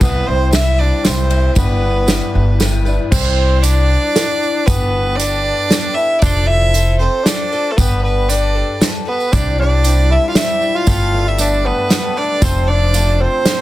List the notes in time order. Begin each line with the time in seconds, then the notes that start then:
0.00 C2 C3 E3 G3 B3 C4 E4 B4 C5, kick, ride, tambourine
0.26 C2 G3 C4 E4 C5 D5
0.52 G3 C4 E4 C5 E5, snare, ride, tambourine
0.79 G3 C4 D4 E4 C5 D5
1.04 C2 G3 C4 E4 C5, snare, ride, tambourine
1.30 G3 C4 E4 C5, ride, tambourine
1.55 G1 G2 G3 B3 D4 E4 B4, kick, ride, tambourine
1.81 G3 D4 E4 B4
2.07 G3 D4 E4 B4, snare, ride, tambourine
2.33 G1 G3 D4 E4 B4
2.59 G3 D4 E4 B4, snare, ride, tambourine
2.73 tambourine
2.85 G3 D4 E4 B4, tambourine
3.11 C2 C3 E3 G3 C4 D4 E4 C5, kick, crash, tambourine
3.63 G3 D4 E4 C5 D5, closed hi-hat, tambourine
4.15 G3 D4 E4 C5, snare, closed hi-hat, tambourine
4.43 tambourine
4.66 G1 G3 B3 D4 G4 A4 B4, kick, closed hi-hat, tambourine
5.16 B3 D4 D5, closed hi-hat, tambourine
5.21 G4 A4
5.70 B3 D4 G4 A4, snare, closed hi-hat, tambourine
5.94 E4 E5, tambourine
6.19 F1 D3 F3 D4 D5, kick, closed hi-hat
6.23 C4 F4 A4 C5, tambourine
6.47 E4 E5
6.74 C4 F4 A4 C5, closed hi-hat, tambourine
6.99 C4 F4 A4 C5
7.03 C4
7.24 C4 D4 F4 A4 C5 D5, snare, closed hi-hat, tambourine
7.52 C4 F4 A4 C5, tambourine
7.71 A3 A4
7.76 G1 G3 B3 D4 G4 A4 B4, kick, closed hi-hat, tambourine
8.03 B3 B4
8.29 D4 G4 A4 B4 D5, closed hi-hat, tambourine
8.55 G4 A4 B4
8.81 D4 G4 A4 B4, snare, closed hi-hat, tambourine
8.95 tambourine
9.05 B3 G4 A4 B4
9.20 tambourine
9.33 C2 C3 G3 C4 D4 E4 G4 C5 D5, kick, closed hi-hat, tambourine
9.58 G3 C4 D4 E4 G4 D5
9.84 G3 C4 D4 E4 G4 C5 D5, closed hi-hat, tambourine
10.09 G3 C4 D4 E4 A4 E5
10.28 F4 F5
10.35 G3 C4 D4 E4 G4 C5 D5 E5, snare, closed hi-hat, tambourine
10.61 G3 C4 D4 E4 D5, tambourine
10.75 F4 F5
10.86 G1 G2 G3 A3 B3 D4 G4 A4 B4, kick, closed hi-hat, tambourine
11.13 G3 A3 B3 D4 F4
11.28 E4 E5
11.38 G3 A3 B3 D4 G4 A4 B4, closed hi-hat, tambourine
11.42 D5
11.64 G3 A3 B3 D4 A4 B4
11.89 G3 A3 B3 D4 G4 A4 B4, snare, closed hi-hat, tambourine
12.16 G3 A3 B3 D4 A4 D5, tambourine
12.42 F1 F2 D3 F3 A3 C4 D4 F4 A4 C5, kick, closed hi-hat, tambourine
12.66 F3 A3 C4 D4 A4 D5
12.93 F3 A3 C4 D4 F4 A4 C5, closed hi-hat, tambourine
13.19 F3 A3 C4 D4 A4 C5
13.45 F3 A3 C4 D4 F4 A4 C5, snare, closed hi-hat, tambourine